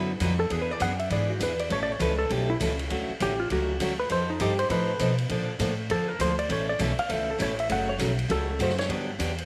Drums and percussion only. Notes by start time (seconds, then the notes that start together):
0.20 hi-hat pedal, ride
0.50 ride
0.80 hi-hat pedal, ride
0.99 ride
1.10 ride
1.40 hi-hat pedal, ride
1.59 ride
1.70 ride
2.00 hi-hat pedal, ride
2.30 ride
2.60 hi-hat pedal, ride
2.79 ride
2.90 ride
3.20 hi-hat pedal, ride
3.50 ride
3.80 hi-hat pedal, ride
4.09 ride
4.40 hi-hat pedal, ride
4.59 ride
4.70 ride
4.99 hi-hat pedal, ride
5.18 ride
5.29 ride
5.59 hi-hat pedal, ride
5.90 ride
6.20 hi-hat pedal, ride
6.39 ride
6.50 ride
6.79 hi-hat pedal, ride
6.99 ride
7.10 ride
7.40 hi-hat pedal, ride
7.59 ride
7.70 ride
7.99 hi-hat pedal, ride
8.19 ride
8.30 ride
8.60 hi-hat pedal, ride
8.70 snare
8.78 snare, ride
8.90 ride
9.20 hi-hat pedal, ride
9.38 ride